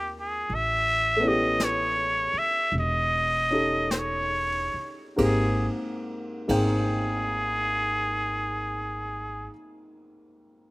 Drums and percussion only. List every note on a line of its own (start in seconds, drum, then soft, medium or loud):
0.52 brush sweep soft
1.60 brush sweep soft
1.60 snare soft
1.60 hi-hat pedal soft
2.72 brush sweep soft
3.91 brush sweep soft
3.91 snare soft
3.91 hi-hat pedal soft
5.18 kick soft
5.18 ride soft
6.49 kick soft
6.49 ride soft